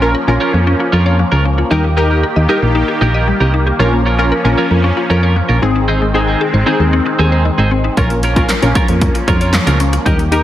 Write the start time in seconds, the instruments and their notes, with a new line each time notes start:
Already playing: fm bass A#1, supersaw synth F3 A#3 C#4
0.01 analog polysynth C#4 F4 A#4, clean electric guitar C#4 F4 A#4
0.15 synth arpeggio sound A#4
0.27 fm bass A#1, analog polysynth C#4 F4 A#4, synth arpeggio sound C#5, muted clean electric guitar stroke
0.40 synth arpeggio sound F3, clean electric guitar C#4 F4 A#4
0.53 fm bass F2, synth arpeggio sound A#3, muted clean electric guitar stroke
0.67 synth arpeggio sound C#4, muted clean electric guitar stroke
0.80 synth arpeggio sound F4, muted clean electric guitar stroke
0.92 fm bass F2, clean electric guitar C#4 F4 A#4, synth arpeggio sound A#4
1.06 clean electric guitar C#4 F4 A#4, synth arpeggio sound C#5
1.19 synth arpeggio sound F3
1.32 fm bass C#2, clean electric guitar C#4 F4 A#4
1.45 synth arpeggio sound C#4, muted clean electric guitar stroke
1.58 synth arpeggio sound F4, muted clean electric guitar stroke
1.71 fm bass D#2, supersaw synth D#3 G4, synth arpeggio sound G3, analog polysynth D#4 G4 A#4, clean electric guitar D#4 G4 A#4
1.84 synth arpeggio sound A#3, muted clean electric guitar stroke
1.97 clean electric guitar D#4 G4 A#4, analog polysynth D#4 G4 A#4
2.10 clean electric guitar D#4 G4 A#4
2.23 synth arpeggio sound A#4
2.36 fm bass D#2, synth arpeggio sound D#5, muted clean electric guitar stroke
2.49 synth arpeggio sound G3, analog polysynth D#4 G4 A#4, clean electric guitar D#4 G4 A#4
2.62 fm bass A#1, synth arpeggio sound A#3, muted clean electric guitar stroke
2.75 synth arpeggio sound D#4, muted clean electric guitar stroke
2.88 synth arpeggio sound G4, muted clean electric guitar stroke
3.01 fm bass A#1, clean electric guitar D#4 G4 A#4, synth arpeggio sound A#4
3.14 clean electric guitar D#4 G4 A#4, synth arpeggio sound D#5
3.27 synth arpeggio sound G3, muted clean electric guitar stroke
3.40 fm bass C2, clean electric guitar D#4 G4 A#4
3.54 synth arpeggio sound D#4, muted clean electric guitar stroke
3.67 synth arpeggio sound G4, muted clean electric guitar stroke
3.79 fm bass A#1, supersaw synth F3 C#4, synth arpeggio sound F3, analog polysynth C#4 F4 A#4, clean electric guitar C#4 F4 A#4
3.93 synth arpeggio sound A#3, muted clean electric guitar stroke
4.06 clean electric guitar C#4 F4 A#4
4.18 analog polysynth C#4 F4 A#4, clean electric guitar C#4 F4 A#4
4.32 synth arpeggio sound A#4
4.44 fm bass A#1, analog polysynth C#4 F4 A#4, synth arpeggio sound C#5, muted clean electric guitar stroke
4.58 synth arpeggio sound F3, clean electric guitar C#4 F4 A#4
4.71 fm bass F2, synth arpeggio sound A#3, muted clean electric guitar stroke
4.84 synth arpeggio sound C#4, muted clean electric guitar stroke
4.97 synth arpeggio sound F4, muted clean electric guitar stroke
5.10 fm bass F2, clean electric guitar C#4 F4 A#4, synth arpeggio sound A#4
5.23 clean electric guitar C#4 F4 A#4, synth arpeggio sound C#5
5.36 synth arpeggio sound F3, muted clean electric guitar stroke
5.49 fm bass A#1, clean electric guitar C#4 F4 A#4
5.62 fm bass G#1, supersaw synth D#3 G#3 C4, analog polysynth C4 D#4 G#4, synth arpeggio sound C4, muted clean electric guitar stroke
5.75 synth arpeggio sound D#4, muted clean electric guitar stroke
5.88 synth arpeggio sound D#3, clean electric guitar C4 D#4 G#4
6.01 synth arpeggio sound G#3, muted clean electric guitar stroke
6.14 analog polysynth C4 D#4 G#4, clean electric guitar C4 D#4 G#4
6.27 clean electric guitar C4 D#4 G#4
6.41 synth arpeggio sound G#4
6.54 fm bass G#1, synth arpeggio sound C5, muted clean electric guitar stroke
6.66 synth arpeggio sound D#3, analog polysynth C4 D#4 G#4, clean electric guitar C4 D#4 G#4
6.80 fm bass D#2, synth arpeggio sound G#3, muted clean electric guitar stroke
6.93 synth arpeggio sound C4, muted clean electric guitar stroke
7.06 synth arpeggio sound D#4, muted clean electric guitar stroke
7.19 fm bass D#2, clean electric guitar C4 D#4 G#4, synth arpeggio sound G#4
7.32 clean electric guitar C4 D#4 G#4, synth arpeggio sound C5
7.45 synth arpeggio sound D#3, muted clean electric guitar stroke
7.58 fm bass G#1, clean electric guitar C4 D#4 G#4
7.71 synth arpeggio sound C4
7.84 synth arpeggio sound D#4, muted clean electric guitar stroke
7.97 fm bass A#1, synth arpeggio sound F3, analog polysynth C#4 F4 A#4, clean electric guitar C#4 F4 A#4, kick, closed hi-hat
8.10 synth arpeggio sound A#3, muted clean electric guitar stroke, closed hi-hat
8.23 clean electric guitar C#4 F4 A#4, closed hi-hat
8.36 analog polysynth C#4 F4 A#4, clean electric guitar C#4 F4 A#4, kick, closed hi-hat
8.49 synth arpeggio sound A#4, snare, clap, closed hi-hat
8.62 fm bass A#1, analog polysynth C#4 F4 A#4, synth arpeggio sound C#5, muted clean electric guitar stroke, closed hi-hat
8.75 synth arpeggio sound F3, clean electric guitar C#4 F4 A#4, kick, closed hi-hat
8.88 fm bass F2, synth arpeggio sound A#3, muted clean electric guitar stroke, closed hi-hat
9.01 synth arpeggio sound C#4, muted clean electric guitar stroke, kick, closed hi-hat
9.15 synth arpeggio sound F4, muted clean electric guitar stroke, closed hi-hat
9.28 fm bass F2, clean electric guitar C#4 F4 A#4, synth arpeggio sound A#4, kick, closed hi-hat
9.41 clean electric guitar C#4 F4 A#4, synth arpeggio sound C#5, closed hi-hat
9.53 synth arpeggio sound F3, muted clean electric guitar stroke, snare, clap, closed hi-hat
9.67 fm bass C#2, clean electric guitar C#4 F4 A#4, closed hi-hat
9.80 synth arpeggio sound C#4, muted clean electric guitar stroke, closed hi-hat
9.93 synth arpeggio sound F4, muted clean electric guitar stroke, closed hi-hat
10.06 fm bass D#2, synth arpeggio sound G3, analog polysynth D#4 G4 A#4, clean electric guitar D#4 G4 A#4, supersaw synth G4, kick, closed hi-hat
10.19 synth arpeggio sound A#3, muted clean electric guitar stroke, closed hi-hat
10.32 analog polysynth D#4 G4 A#4, clean electric guitar D#4 G4 A#4, closed hi-hat